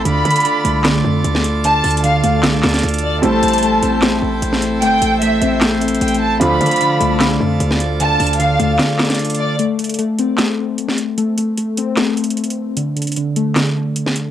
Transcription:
<<
  \new Staff \with { instrumentName = "Violin section" } { \time 4/4 \key a \minor \tempo 4 = 151 b''2 r2 | a''4 f''4 r4. d''8 | a''2 r2 | g''4 e''4 r4 g''8 a''8 |
b''2 r2 | a''4 f''4 r4. d''8 | r1 | r1 |
r1 | }
  \new Staff \with { instrumentName = "Pipe organ" } { \time 4/4 \key a \minor << { <f' d'' a''>1~ | <f' d'' a''>1 | <e' c'' g''>1~ | <e' c'' g''>1 |
<f' d'' a''>1~ | <f' d'' a''>1 | r1 | r1 |
r1 | } \\ { a'1~ | a'1~ | a'1~ | a'1 |
a'1~ | a'1 | r1 | r1 |
r1 | } >> }
  \new Staff \with { instrumentName = "Felt piano" } { \time 4/4 \key a \minor r1 | r1 | <g a c' e'>1~ | <g a c' e'>1 |
<f a d' f'>1~ | <f a d' f'>1 | r1 | r1 |
r1 | }
  \new Staff \with { instrumentName = "Synth keys" } { \time 4/4 \key a \minor d8 d8 d8 a8 d2 | d8 d8 d8 a8 d2 | a8 a8 a8 c'8 a2 | a8 a8 a8 c'8 a2 |
d8 d8 d8 a8 d2 | d8 d8 d8 a8 d2 | a8 a8 a8 c'8 a2 | a8 a8 a8 c'8 a2 |
d8 d8 d8 a8 d2 | }
  \new Staff \with { instrumentName = "808-style bass" } { \clef bass \time 4/4 \key a \minor d,8 d4 c,4 f,8 d,4~ | d,8 d,4 d,8 c,8 d,8 d,4 | a,,8 a,,4 a,,4 a,,8 a,,4 | g,,8 a,,4 a,,4. a,,4 |
d,8 d4 c,4 f,8 d,4~ | d,8 d,4 d,8 r2 | r1 | r1 |
r1 | }
  \new DrumStaff \with { instrumentName = "Drums" } \drummode { \time 4/4 hh8 hh32 hh32 hh32 hh32 hh8 hh8 <hc hh sn>4 hh16 sn16 hh8 | \tuplet 3/2 { hh16 r16 r16 <hh hho>16 hh16 hh16 } hh8 hh8 <hc hh sn>8 <hc hh sn>32 hh32 <hh sn>32 hh32 hh32 hh32 hh32 hh8 r32 | hh8 hh32 hh32 hh32 hh32 hh8 hh8 <hc hh sn>4 hh16 sn16 hh8 | hh8 hh8 hh8 hh8 \tuplet 3/2 { <hc hh sn>16 r16 r16 hh16 hh16 hh16 hh16 hh16 hh16 r16 r16 r16 } |
hh8 hh32 hh32 hh32 hh32 hh8 hh8 <hc hh sn>4 hh16 sn16 hh8 | \tuplet 3/2 { hh16 r16 r16 <hh hho>16 hh16 hh16 } hh8 hh8 <hc hh sn>8 <hc hh sn>32 hh32 <hh sn>32 hh32 hh32 hh32 hh32 hh8 r32 | hh8 hh32 hh32 hh32 hh32 hh8 hh8 <hc hh sn>4 hh16 sn16 hh8 | hh8 hh8 hh8 hh8 \tuplet 3/2 { <hc hh sn>16 r16 r16 hh16 hh16 hh16 hh16 hh16 hh16 r16 r16 r16 } |
hh8 hh32 hh32 hh32 hh32 hh8 hh8 <hc hh sn>4 hh16 sn16 hh8 | }
>>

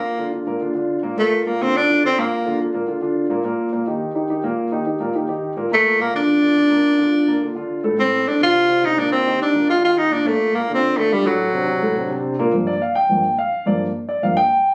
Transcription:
<<
  \new Staff \with { instrumentName = "Grand piano" } { \time 4/4 \key g \minor \tempo 4 = 212 <bes, bes bes'>8 <d d' f'>8 <d d' f'>8 <bes, bes bes'>8 <d d' f'>8 <d d' f'>4 <bes, bes bes'>8 | <bes, bes bes'>4 <bes, bes bes'>8 <d d' f'>4 <d d' f'>8 <d d' f'>8 <bes, bes bes'>8~ | <bes, bes bes'>8 <d d' f'>8 <d d' f'>8 <bes, bes bes'>8 <d d' f'>8 <d d' f'>4 <bes, bes bes'>8 | <bes, bes bes'>4 <bes, bes bes'>8 <ees ees' g'>4 <ees ees' g'>8 <ees ees' g'>8 <bes, bes bes'>8~ |
<bes, bes bes'>8 <ees ees' g'>8 <ees ees' g'>8 <bes, bes bes'>8 <ees ees' g'>8 <ees ees' g'>4 <bes, bes bes'>8 | <bes, bes bes'>4 <bes, bes bes'>8 <d d' f'>4 <d d' f'>8 <d d' f'>8 <bes, bes bes'>8~ | <bes, bes bes'>8 <d d' f'>8 <d d' f'>8 <bes, bes bes'>8 <d d' f'>8 <d d' f'>4 <a, a a'>8 | <a, a a'>4 <a, a a'>8 <c c' d'>4 <c c' d'>8 <c c' d'>8 <bes, bes bes'>8~ |
<bes, bes bes'>8 <ees ees' g'>8 <ees ees' g'>8 <bes, bes bes'>8 <ees ees' g'>8 <ees ees' g'>4 <bes, bes bes'>8 | <bes, bes bes'>4 <bes, bes bes'>8 <d d' f'>4 <d d' f'>8 <d d' f'>8 <a, a a'>8~ | <a, a a'>8 <c c' d'>8 <c c' d'>8 <a, a a'>8 <c c' d'>8 <c c' d'>4 <bes, bes bes'>8 | r8 d''8 f''8 g''4. f''4 |
d''8 r4 d''8 f''8 g''4. | }
  \new Staff \with { instrumentName = "Grand piano" } { \clef bass \time 4/4 \key g \minor r1 | r1 | r1 | r1 |
r1 | r1 | r1 | r1 |
r1 | r1 | r1 | <g, f bes>8 r4. <g, f bes>8 r4. |
<g, f bes>8 r4. <g, f bes>8 r4. | }
  \new Staff \with { instrumentName = "Tenor saxophone" } { \time 4/4 \key g \minor bes4 r2. | a8.~ a32 a32 bes8 c'8 d'4 c'8 bes8~ | bes4 r2. | r1 |
r1 | a4 bes8 d'2~ d'8~ | d'2. r4 | c'4 d'8 f'4. ees'8 d'8 |
c'4 d'4 f'8 f'8 ees'8 d'8 | a4 \tuplet 3/2 { bes4 c'8~ } c'8 a8 g8 fis8~ | fis2. r4 | r1 |
r1 | }
>>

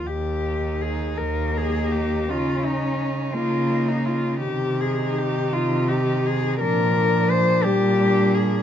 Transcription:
<<
  \new Staff \with { instrumentName = "Cello" } { \time 6/8 \key ees \major \tempo 4. = 55 g'4 aes'8 bes'8 aes'8 g'8 | f'8 ees'8 r8 f'8. ees'16 f'8 | g'8 aes'8 g'8 f'8 g'8 aes'8 | bes'4 c''8 g'4 aes'8 | }
  \new Staff \with { instrumentName = "Cello" } { \time 6/8 \key ees \major r8 ees'4. ees'4 | ees'8 ees'4. ees'4 | r8 ees'4. ees'4 | d'8 d'4. d'4 | }
  \new Staff \with { instrumentName = "Cello" } { \clef bass \time 6/8 \key ees \major r4. bes4. | des'4. bes4. | ees2. | f4. g4. | }
  \new Staff \with { instrumentName = "Cello" } { \clef bass \time 6/8 \key ees \major ees,4. ees,4. | des4. des4. | c4. c4. | bes,4. bes,4. | }
>>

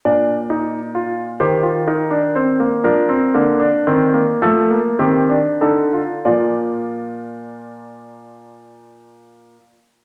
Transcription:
<<
  \new Staff \with { instrumentName = "Grand piano" } { \time 6/8 \key bes \major \tempo 4. = 36 << { d''4. c''8 bes'8 c''8 | bes'4. a'8 g'8 a'8 | <f bes d''>2. | } \\ { d'8 ees'8 f'8 g'16 f'16 ees'16 d'16 c'16 bes16 | d'16 c'16 bes16 d'16 c'16 bes16 a16 bes16 c'16 d'16 ees'16 f'16 | f'2. | } >> }
  \new Staff \with { instrumentName = "Grand piano" } { \clef bass \time 6/8 \key bes \major bes,4. ees4. | f8 d8 ees8 f8 ees8 d8 | bes,2. | }
>>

